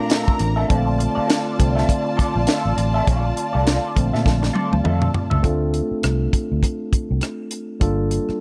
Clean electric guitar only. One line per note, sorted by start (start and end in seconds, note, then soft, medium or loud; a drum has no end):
0.10 0.33 F4 medium
0.10 0.33 A4 medium
0.10 0.34 E5 medium
0.39 muted clean electric guitar stroke soft
0.56 0.67 F4 soft
0.56 0.68 A4 medium
0.56 0.69 E5 medium
0.68 0.92 F4 medium
0.68 0.86 A4 medium
0.68 0.85 D5 medium
0.86 muted clean electric guitar stroke soft
0.98 muted clean electric guitar stroke soft
1.15 1.26 F4 soft
1.15 1.27 A4 soft
1.15 1.28 D5 medium
1.27 1.51 F4 medium
1.27 1.51 A4 medium
1.27 1.52 D5 medium
1.58 muted clean electric guitar stroke soft
1.75 1.91 F4 soft
1.75 1.91 A4 soft
1.75 1.90 E5 soft
2.05 muted clean electric guitar stroke soft
2.17 2.40 F4 medium
2.17 2.34 A4 medium
2.17 2.33 D5 medium
2.34 muted clean electric guitar stroke soft
2.47 2.70 F4 medium
2.47 2.70 A4 medium
2.47 2.71 E5 medium
2.77 muted clean electric guitar stroke soft
2.94 3.05 F4 soft
2.94 3.06 A4 soft
2.94 3.07 E5 medium
3.06 3.29 F4 medium
3.06 3.24 A4 medium
3.06 3.22 D5 medium
3.23 muted clean electric guitar stroke soft
3.36 muted clean electric guitar stroke soft
3.53 3.65 F4 soft
3.53 3.65 A4 soft
3.53 3.66 D5 medium
3.66 3.89 F4 medium
3.66 3.89 A4 medium
3.66 3.89 D5 medium
3.96 muted clean electric guitar stroke soft
4.13 4.28 F4 soft
4.13 4.28 A4 soft
4.13 4.28 E5 medium
4.42 muted clean electric guitar stroke soft
4.53 4.77 F4 medium
4.53 4.72 A4 medium
4.53 4.71 D5 medium
4.72 muted clean electric guitar stroke soft
4.84 5.07 F4 medium
4.84 5.07 A4 medium
4.84 5.08 E5 medium
5.14 muted clean electric guitar stroke soft
5.30 5.46 F4 soft
5.30 5.46 A4 soft
5.30 5.45 E5 soft